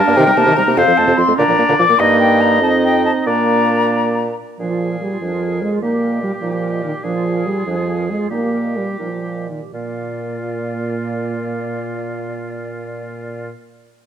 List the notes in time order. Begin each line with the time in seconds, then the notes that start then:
Already playing: D4 A#4 A5
0.07 G2 A#3
0.16 C3 D#3 D#4 G5
0.26 C3 G3
0.37 C3 A#3 A5
0.46 C3 D#3
0.56 C3 G3 A#5
0.67 C3 A#3
0.77 F2 C3 C4 C5 F5
0.88 F2 F3
0.97 F2 A3 A5
1.07 F2 C3
1.17 F2 F3 C6
1.27 F2 A3
1.37 A#2 D3 D4 D5 A#5
1.48 A#2 F3
1.58 A#2 A#3
1.69 A#2 D3
1.78 A#2 F3 D6
1.89 A#2 A#3
1.99 G2 A#3 D#4 D#5
2.20 G5
2.41 A#5
2.62 F2 C4 D#4 A5
2.84 G5
3.05 A5
3.27 A#2 A#3 D4 D5 A#5
4.59 A#2 F3 D4 G#4
4.70 F4
4.81 G#4
4.92 A#4
5.01 G3 G#4
5.13 F4
5.21 F2 F3 D4 A#4
5.33 F4
5.43 G#4
5.53 A#4
5.62 G#3 G#4
5.73 F4
5.82 A#2 A#3 D#4 G4
5.93 G4
6.03 A#4
6.13 D#5
6.23 G3 A#4
6.33 G4
6.42 A#2 F3 D#4
6.53 G4
6.63 A#4
6.72 D#5
6.83 D#3 A#4
6.94 G4
7.03 A#2 F3 D4 G#4
7.15 F4
7.25 G#4
7.36 A#4
7.46 G3 G#4
7.57 F4
7.66 F2 F3 D4
7.77 F4
7.88 G#4
7.98 A#4
8.08 G#3 G#4
8.19 F4
8.30 A#2 A#3 D#4 G4
8.42 G4
8.53 A#4
8.65 D#5
8.76 G3 A#4
8.87 G4
8.99 A#2 F3 D#4 A#4
9.11 G4
9.23 A#4
9.36 D#5
9.49 D#3 A#4
9.62 G4
9.73 A#2 A#3 F4 D5